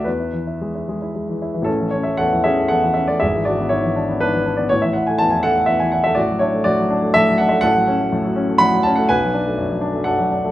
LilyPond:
<<
  \new Staff \with { instrumentName = "Grand piano" } { \time 3/4 \key a \major \tempo 4 = 122 b'2~ b'8 r8 | <cis' a'>8 cis''16 e''16 <a' fis''>8 <gis' e''>8 <a' fis''>8 e''16 d''16 | <gis' e''>8 <fis' d''>8 <e' cis''>4 <d' b'>8. d''16 | cis''16 e''16 fis''16 gis''16 a''16 gis''16 <a' fis''>8 e''16 gis''16 fis''16 e''16 |
<fis' d''>8 <e' cis''>8 <fis' d''>4 <a' e''>8 fis''16 e''16 | \key fis \minor <a' fis''>2 <fis'' b''>8 a''16 fis''16 | <b' gis''>2 <a' fis''>8 r8 | }
  \new Staff \with { instrumentName = "Grand piano" } { \clef bass \time 3/4 \key a \major e,16 e'16 e16 e'16 gis16 e'16 gis16 e'16 gis16 e16 e'16 e16 | a,,16 e16 cis'16 a16 e,16 e16 cis'16 a16 e,16 e16 cis'16 a16 | gis,,16 e16 d'16 b16 gis,16 e16 d'16 b16 gis,16 e16 d'16 b16 | a,,16 e16 e'16 a16 e,16 e16 e'16 a16 e,16 e16 e'16 a16 |
a,,16 fis16 d'16 a16 a,16 fis16 d'16 a16 a,16 fis16 d'16 a16 | \key fis \minor a,,16 fis16 cis'16 a16 a,16 fis16 cis'16 a16 a,16 fis16 cis'16 a16 | b,,16 fis16 d'16 a16 fis,16 fis16 d'16 a16 fis,16 fis16 d'16 a16 | }
>>